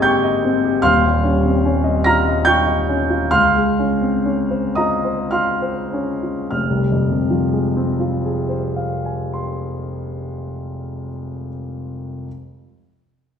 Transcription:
Already playing: G#1 G#2 G#3 A#3 C4 G4 D#5 G#5 A#5 D#6 F6 G#6 A#6
0.02 G4 G5 C#6 G6
0.24 D#5
0.44 C4
0.64 G4
0.82 D#1 D#2 F5 C6 F6
1.05 G3
1.24 C#4
1.45 C4
1.65 C#4
1.84 D#5
2.04 F4 A#5 F6 A#6
2.27 D#5
2.45 F4 G5 C#6 G6
2.66 D#5
2.89 C#4
3.10 F4
3.31 C#2 F5 C6 F6
3.56 G#3
3.79 C#4
4.01 C4
4.26 C#4
4.50 C5
4.75 F4 D#5 A#5 D#6
5.04 C5
5.31 F4 F5 C6 F6
5.62 C5
5.93 C#4
6.23 F4
6.51 F1 F6
6.70 C2
6.92 F2
7.10 C3
7.30 F3
7.53 G#3
7.76 C4
8.00 F4
8.25 G#4
8.49 C5
8.76 F5
9.05 G#5
9.33 C6

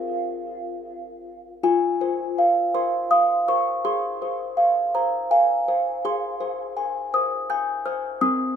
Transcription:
Already playing: F4 G#4 C5 F5
1.63 F4 G#5
2.01 C5
2.38 F5
2.75 C5 C6
3.11 F5 D#6
3.48 C5 C#6
3.85 G#4 C6
4.22 C5
4.57 F5
4.95 C5 A#5
5.31 F5 G#5
5.68 C5
6.05 G#4 C6
6.40 C5
6.77 G#5
7.14 C5 D#6
7.50 G#5 G6
7.86 C5 F6
8.21 C4 D#6

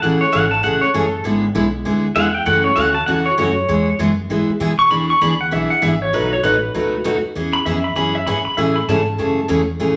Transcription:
0.02 A1 C#3 E3 A3 C#4 G#4 F#5
0.21 C#5
0.32 G#1 C#3 E3 A3 C#4 G#4 F#5
0.51 A5
0.63 A1 C#3 E3 A3 C#4 G#4 F#5
0.81 C#5
0.93 F#1 C#3 E3 A3 C#4 G#4 A4
1.24 G#1 D3 G#3 B3 E4 G#4
1.55 B1 D3 G#3 B3 E4 G#4
1.85 D2 D3 G#3 B3 E4 G#4
2.15 E2 D3 G#3 B3 E4 G#4 F#5
2.34 G5
2.46 F#2 C#3 E3 A3 C#4 F#4 F#5
2.64 C#5
2.76 D2 C#3 E3 A3 C#4 F#4 F#5
2.94 A5
3.06 E2 C#3 E3 A3 C#4 F#4 F#5
3.26 C#5
3.38 F#2 C#3 E3 A3 C#4 F#4 C#5
3.69 E2 E3 G#3 B3 E4 G#4
3.99 F#2 E3 G#3 B3 E4 G#4
4.29 G#2 E3 G#3 B3 E4 G#4
4.49 muted upright bass stroke
4.60 B2 E3 G#3 B3 E4 G#4
4.79 C#6
4.90 E2 E3 B3 D4 G#4 B5
5.10 C#6
5.21 D2 E3 B3 D4 G#4 B5
5.41 F#5
5.51 B1 E3 B3 D4 G#4 E5
5.70 F#5
5.82 G#1 E3 B3 D4 G#4 E5
6.02 C#5
6.13 B1 B2 F#3 A3 D#4 F#4 B4
6.33 C#5
6.43 A1 B2 F#3 A3 D#4 F#4 B4
6.63 B4
6.74 C#2 B2 F#3 A3 D#4 F#4
7.04 D#2 B2 F#3 A3 D#4 F#4
7.24 muted upright bass stroke
7.35 E2 E3 B3 C#4 G#4
7.53 B5
7.66 F2 E3 B3 C#4 G#4 E5
7.84 B5
7.95 F#2 E3 B3 C#4 G#4 B5
8.15 E5
8.26 G#2 E3 B3 C#4 G#4 B5
8.45 B5, muted upright bass stroke
8.57 A2 C#3 E3 A3 C#4 G#4 E5
8.76 B5
8.88 G#2 C#3 E3 A3 C#4 G#4 A5
9.18 F#2 C#3 E3 A3 C#4 G#4
9.48 E2 C#3 E3 A3 C#4 G#4
9.79 A1 C#3 E3 A3 C#4 G#4

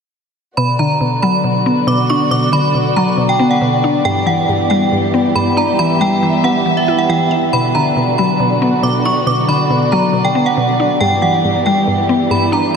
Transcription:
0.57 B2 D3 B3 F#4 D5 B5
0.79 D3 A#5
1.01 B2
1.22 F#3 B5
1.44 B2
1.66 B3
1.87 B2 D6
2.10 D4 C#6
2.31 B2 D6
2.52 D3 B5
2.75 B2
2.96 F#3 A#5
3.17 B2
3.29 G5
3.39 B3
3.51 F#5
3.61 B2
3.84 D4
4.05 G2 E3 G4 G5
4.26 E3 F#5
4.49 G2
4.70 G3 G5
4.92 G2
5.14 B3
5.35 G2 B5
5.57 D4 A#5
5.79 E3 E5 B5
6.01 G3 G5
6.23 E3
6.44 B3 F#5
6.66 E3
6.77 E5
6.88 E4
6.98 F#5
7.09 E3 G5
7.31 E5
7.53 B2 D3 F#4 D5 B5
7.75 D3 A#5
7.96 B2
8.18 F#3 B5
8.40 B2
8.62 B3
8.83 B2 D6
9.05 D4 C#6
9.27 B2 D6
9.48 D3 B5
9.70 B2
9.92 F#3 A#5
10.13 B2
10.25 G5
10.35 B3
10.46 F#5
10.57 B2
10.80 D4
11.01 G2 E3 B3 G4 G5
11.22 E3 F#5
11.45 G2
11.66 G3 G5
11.88 G2
12.09 B3
12.31 G2 B5
12.52 D4 A#5

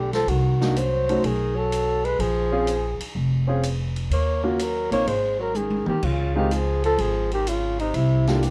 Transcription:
Already playing: B1 G4
0.13 F3 A4, snare, ride
0.27 C2 D#3 F#4, ride
0.61 A#3 D4 D#4 F#4, snare
0.76 F#3 C5, hi-hat pedal, ride
1.09 A3 C#4 D#4 F#4, ride
1.23 B1 D#3 G#4, ride
1.56 F#3 A4
1.72 hi-hat pedal, ride
2.05 G#3 B4, ride
2.19 A#1 F3 G#4, ride
2.52 C4 C#4 F4 G#4
2.67 hi-hat pedal, ride
3.00 muted upright bass stroke, ride
3.15 F1
3.47 C4 C#4 F4 G#4
3.63 hi-hat pedal, ride
3.96 ride
4.10 D#2 A#3 C#5, ride
4.44 C#3 A#3 C#4 F4 F#4
4.59 F#3 A#4, hi-hat pedal, ride
4.91 A#1 A#3 C4 D#4 F4 C#5, ride
5.06 G#1 G#3 C5, ride
5.39 F#3 A#4
5.55 D#3 G#4, hi-hat pedal, high tom
5.70 high tom
5.86 D#3 G4, muted upright bass stroke, mid tom
6.03 C#2 C#3 F4, kick, crash
6.36 D#3 G#3 C4 D#4 F4 G4
6.51 F3 G#4, hi-hat pedal, ride
6.84 F3 A4, ride
6.97 G#1 F3 G#4, ride
7.32 D#3 G4, ride
7.47 C#3 F4, hi-hat pedal, ride
7.79 C3 D#4, ride
7.94 C2 C3 E4, ride
8.27 D3 A#3 D4 E4 F4 G4, snare, ride
8.43 E3 G4, hi-hat pedal, ride

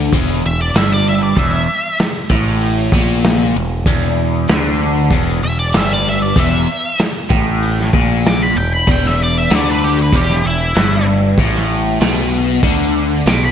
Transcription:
Already playing: D3
0.12 E1 E2, kick, open hi-hat
0.44 E1 E2 E5
0.62 D5
0.74 G1 G2 E5, snare, open hi-hat
0.93 D5
1.09 E5
1.23 D5
1.36 E1 E2 E5, kick, open hi-hat
1.98 snare, open hi-hat
2.30 A1 A2, kick
2.61 open hi-hat
2.92 A#1 A#2, kick
3.23 snare, open hi-hat
3.56 E1 E2
3.86 E1 E2, kick, open hi-hat
4.48 D2 D3, snare, open hi-hat
5.10 E1 E2, kick, open hi-hat
5.43 E2 E5
5.59 D5
5.73 G1 G2, snare, open hi-hat
5.77 E5
5.93 D5
6.09 E5
6.22 D5
6.36 E1 E2 E5, kick, open hi-hat
6.98 snare, open hi-hat
7.30 A1 A2, kick
7.63 open hi-hat
7.80 snare
7.93 A#1 A#2, kick
8.25 D6, snare, open hi-hat
8.43 B5
8.56 E1 E2 G5
8.74 B5
8.87 E1 E2, kick, open hi-hat
8.92 G5
9.06 E5, snare
9.23 D5
9.38 E5
9.50 D2 D3, snare, open hi-hat
9.55 D5
9.71 B4
9.84 G4
10.02 B4
10.13 E1 E2 G4, kick, open hi-hat
10.30 snare
10.44 E1 E2 E4
10.75 G1 G2, snare, open hi-hat
11.38 A1 A2, kick, open hi-hat
11.55 snare
12.00 B1 B2, snare, open hi-hat
12.63 D2 D3, kick, open hi-hat
13.26 B1 B2 D6, snare, open hi-hat
13.45 B5

